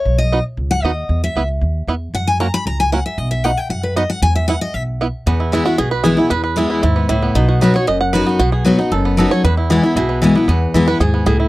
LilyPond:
<<
  \new Staff \with { instrumentName = "Five-string banjo" } { \time 4/4 \key e \major \tempo 4 = 230 << { r4 <b dis' fis'>8 r4. <b dis' fis'>8 r8 | r4 <b e'>8 r4. <b e'>8 r8 | r4 <ais cis' fis'>8 r4. <ais cis' fis'>8 r8 | r4 <b dis' fis'>8 r4. <b dis' fis'>8 r8 |
r4 <b e'>8 r4. <b e'>8 r8 | r4 e'8 fis'8 gis'8 b'8 gis'4 | b'8 b'8 r2. | r4 b'8 cis''8 dis''8 fis''8 b'4 |
fis'8 gis'8 r2 r8 cis''8 | b'4 gis'2~ gis'8 r8 | r4. b'8 gis'4 gis'4 | } \\ { r1 | r1 | r1 | r1 |
r1 | b8 e'4. r4. e'8~ | e'4 e'8 e'8 e'8 b8 e'8 b8 | dis'8 fis'4. r4. b8~ |
b4 b8 dis'8 a'8 b8 a'4 | r8 e'4 e'8 e'8 b8 e'8 b8 | b4 e'4. b4 e'8 | } >> }
  \new Staff \with { instrumentName = "Steel-string acoustic guitar" } { \time 4/4 \key e \major << { cis''8 dis''4 r4 fis''8 dis''4~ | dis''8 e''4 r2 r8 | fis''8 gis''8 ais''8 b''8 ais''8 gis''8 fis''8 e''8 | dis''8 e''8 fis''8 g''8 fis''8 b'8 dis''8 fis''8 |
gis''8 e''8 fis''8 dis''8 e''8 r4. | r4 <e gis b e'>8 <b e'>8 r4 <e gis b e'>8 <b e'>8 | r4 <e gis b e'>4 r2 | r4 <fis b dis' fis'>8 <dis' fis'>8 r4 <fis b dis' fis'>8 <dis' fis'>8 |
r4 <fis b dis' fis'>8 <dis' fis'>8 r4 <fis b dis' fis'>8 <dis' fis'>8 | r4 <e gis b e'>8 <b e'>8 r4 <e gis b e'>8 <b e'>8 | r4 <e gis b e'>8 <b e'>8 r2 | } \\ { r1 | r1 | r1 | r1 |
r1 | e,2 b,2 | e,2 gis,4 a,4 | b,2 fis,2 |
b,2 fis,2 | e,2 b,2 | e,2 gis,4 a,4 | } >> }
  \new Staff \with { instrumentName = "Upright bass" } { \clef bass \time 4/4 \key e \major b,,2 cis,4 dis,4 | e,4 cis,4 dis,4 e,4 | fis,2 cis,2 | b,,2 fis,2 |
e,2 b,,2 | e,2 b,,2 | e,2 dis,4 cis,4 | b,,2 fis,,2 |
b,,2 fis,,2 | e,2 b,,2 | e,4 e,4 dis,4 cis,4 | }
>>